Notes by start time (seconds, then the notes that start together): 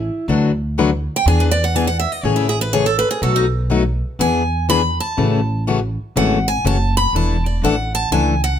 Already playing: E4
0.28 D2 D3 F#3 A3 D4 F#4 B4
0.78 D3 F#3 A3 D4 F#4 B4
1.16 G5
1.26 E2 E3 B3 D4 G#4 G#5
1.40 B4
1.51 D5
1.64 F#5
1.75 E3 B3 D4 G#4 G#5
1.87 F#5
2.00 E5
2.12 D#5
2.23 A1 C#3 E3 A3 C#4 G#4 C#5
2.36 E4
2.49 G#4
2.61 B4
2.73 C#3 E3 A3 C#4 G#4 C#5
2.86 A4
2.99 B4
3.11 G#4
3.22 B1 B2 F#3 A3 D#4 F#4 A4
3.36 D#4
3.70 B2 F#3 A3 D#4 F#4
4.19 E2 E3 B3 D4 G#4 G#5
4.69 E3 B3 D4 G#4 B5
5.00 A5
5.17 A1 C#3 E3 A3 C#4 F#4
5.67 C#3 E3 A3 C#4 F#4
6.16 G#1 C#3 E3 A3 C#4 F#4 F#5
6.48 G#5
6.64 F#1 C#3 E3 A3 C#4 F#4 A5
6.97 B5
7.13 E1 E3 A3 D4 E4 A4 A5
7.46 D5
7.62 A1 E3 A3 D4 E4 A4 F#5
7.95 A5
8.11 C#2 E3 A3 D4 E4 A4 G#5
8.44 F#5